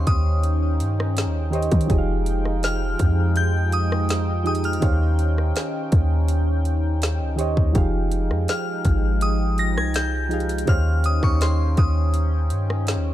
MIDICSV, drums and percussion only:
0, 0, Header, 1, 2, 480
1, 0, Start_track
1, 0, Tempo, 731707
1, 1245, Time_signature, 4, 2, 24, 8
1, 8619, End_track
2, 0, Start_track
2, 0, Title_t, "Drums"
2, 45, Note_on_c, 9, 42, 72
2, 46, Note_on_c, 9, 36, 89
2, 110, Note_off_c, 9, 42, 0
2, 112, Note_off_c, 9, 36, 0
2, 285, Note_on_c, 9, 42, 77
2, 351, Note_off_c, 9, 42, 0
2, 526, Note_on_c, 9, 42, 69
2, 591, Note_off_c, 9, 42, 0
2, 656, Note_on_c, 9, 37, 100
2, 722, Note_off_c, 9, 37, 0
2, 765, Note_on_c, 9, 42, 77
2, 775, Note_on_c, 9, 38, 114
2, 831, Note_off_c, 9, 42, 0
2, 841, Note_off_c, 9, 38, 0
2, 1005, Note_on_c, 9, 42, 41
2, 1066, Note_off_c, 9, 42, 0
2, 1066, Note_on_c, 9, 42, 50
2, 1125, Note_off_c, 9, 42, 0
2, 1125, Note_on_c, 9, 42, 60
2, 1126, Note_on_c, 9, 36, 100
2, 1186, Note_off_c, 9, 42, 0
2, 1186, Note_on_c, 9, 42, 67
2, 1192, Note_off_c, 9, 36, 0
2, 1245, Note_off_c, 9, 42, 0
2, 1245, Note_on_c, 9, 36, 114
2, 1245, Note_on_c, 9, 42, 73
2, 1310, Note_off_c, 9, 42, 0
2, 1311, Note_off_c, 9, 36, 0
2, 1484, Note_on_c, 9, 42, 64
2, 1550, Note_off_c, 9, 42, 0
2, 1610, Note_on_c, 9, 37, 65
2, 1676, Note_off_c, 9, 37, 0
2, 1725, Note_on_c, 9, 42, 70
2, 1731, Note_on_c, 9, 38, 112
2, 1791, Note_off_c, 9, 42, 0
2, 1797, Note_off_c, 9, 38, 0
2, 1964, Note_on_c, 9, 42, 68
2, 1965, Note_on_c, 9, 36, 95
2, 2029, Note_off_c, 9, 42, 0
2, 2031, Note_off_c, 9, 36, 0
2, 2202, Note_on_c, 9, 42, 77
2, 2267, Note_off_c, 9, 42, 0
2, 2443, Note_on_c, 9, 42, 68
2, 2509, Note_off_c, 9, 42, 0
2, 2573, Note_on_c, 9, 37, 98
2, 2638, Note_off_c, 9, 37, 0
2, 2683, Note_on_c, 9, 42, 79
2, 2692, Note_on_c, 9, 38, 121
2, 2748, Note_off_c, 9, 42, 0
2, 2758, Note_off_c, 9, 38, 0
2, 2924, Note_on_c, 9, 42, 42
2, 2984, Note_off_c, 9, 42, 0
2, 2984, Note_on_c, 9, 42, 49
2, 3044, Note_off_c, 9, 42, 0
2, 3044, Note_on_c, 9, 42, 60
2, 3104, Note_off_c, 9, 42, 0
2, 3104, Note_on_c, 9, 42, 68
2, 3162, Note_off_c, 9, 42, 0
2, 3162, Note_on_c, 9, 42, 69
2, 3165, Note_on_c, 9, 36, 120
2, 3228, Note_off_c, 9, 42, 0
2, 3230, Note_off_c, 9, 36, 0
2, 3404, Note_on_c, 9, 42, 66
2, 3469, Note_off_c, 9, 42, 0
2, 3531, Note_on_c, 9, 37, 65
2, 3596, Note_off_c, 9, 37, 0
2, 3645, Note_on_c, 9, 42, 71
2, 3651, Note_on_c, 9, 38, 122
2, 3711, Note_off_c, 9, 42, 0
2, 3717, Note_off_c, 9, 38, 0
2, 3883, Note_on_c, 9, 42, 65
2, 3886, Note_on_c, 9, 36, 89
2, 3949, Note_off_c, 9, 42, 0
2, 3951, Note_off_c, 9, 36, 0
2, 4123, Note_on_c, 9, 42, 73
2, 4188, Note_off_c, 9, 42, 0
2, 4364, Note_on_c, 9, 42, 66
2, 4430, Note_off_c, 9, 42, 0
2, 4604, Note_on_c, 9, 42, 75
2, 4613, Note_on_c, 9, 38, 112
2, 4669, Note_off_c, 9, 42, 0
2, 4679, Note_off_c, 9, 38, 0
2, 4845, Note_on_c, 9, 42, 66
2, 4911, Note_off_c, 9, 42, 0
2, 4966, Note_on_c, 9, 36, 98
2, 5032, Note_off_c, 9, 36, 0
2, 5083, Note_on_c, 9, 42, 68
2, 5085, Note_on_c, 9, 36, 117
2, 5149, Note_off_c, 9, 42, 0
2, 5151, Note_off_c, 9, 36, 0
2, 5324, Note_on_c, 9, 42, 67
2, 5389, Note_off_c, 9, 42, 0
2, 5450, Note_on_c, 9, 37, 67
2, 5516, Note_off_c, 9, 37, 0
2, 5564, Note_on_c, 9, 42, 69
2, 5570, Note_on_c, 9, 38, 120
2, 5630, Note_off_c, 9, 42, 0
2, 5636, Note_off_c, 9, 38, 0
2, 5803, Note_on_c, 9, 42, 66
2, 5806, Note_on_c, 9, 36, 88
2, 5869, Note_off_c, 9, 42, 0
2, 5871, Note_off_c, 9, 36, 0
2, 6043, Note_on_c, 9, 42, 73
2, 6109, Note_off_c, 9, 42, 0
2, 6284, Note_on_c, 9, 42, 64
2, 6350, Note_off_c, 9, 42, 0
2, 6413, Note_on_c, 9, 37, 94
2, 6479, Note_off_c, 9, 37, 0
2, 6522, Note_on_c, 9, 42, 77
2, 6532, Note_on_c, 9, 38, 122
2, 6588, Note_off_c, 9, 42, 0
2, 6597, Note_off_c, 9, 38, 0
2, 6764, Note_on_c, 9, 42, 41
2, 6824, Note_off_c, 9, 42, 0
2, 6824, Note_on_c, 9, 42, 50
2, 6883, Note_off_c, 9, 42, 0
2, 6883, Note_on_c, 9, 42, 60
2, 6943, Note_off_c, 9, 42, 0
2, 6943, Note_on_c, 9, 42, 69
2, 7002, Note_off_c, 9, 42, 0
2, 7002, Note_on_c, 9, 42, 70
2, 7004, Note_on_c, 9, 36, 116
2, 7067, Note_off_c, 9, 42, 0
2, 7070, Note_off_c, 9, 36, 0
2, 7243, Note_on_c, 9, 42, 66
2, 7308, Note_off_c, 9, 42, 0
2, 7366, Note_on_c, 9, 36, 96
2, 7369, Note_on_c, 9, 37, 60
2, 7432, Note_off_c, 9, 36, 0
2, 7434, Note_off_c, 9, 37, 0
2, 7484, Note_on_c, 9, 42, 68
2, 7490, Note_on_c, 9, 38, 116
2, 7550, Note_off_c, 9, 42, 0
2, 7556, Note_off_c, 9, 38, 0
2, 7723, Note_on_c, 9, 42, 71
2, 7725, Note_on_c, 9, 36, 92
2, 7788, Note_off_c, 9, 42, 0
2, 7791, Note_off_c, 9, 36, 0
2, 7962, Note_on_c, 9, 42, 72
2, 8027, Note_off_c, 9, 42, 0
2, 8201, Note_on_c, 9, 42, 64
2, 8267, Note_off_c, 9, 42, 0
2, 8332, Note_on_c, 9, 37, 96
2, 8397, Note_off_c, 9, 37, 0
2, 8442, Note_on_c, 9, 42, 76
2, 8451, Note_on_c, 9, 38, 122
2, 8507, Note_off_c, 9, 42, 0
2, 8517, Note_off_c, 9, 38, 0
2, 8619, End_track
0, 0, End_of_file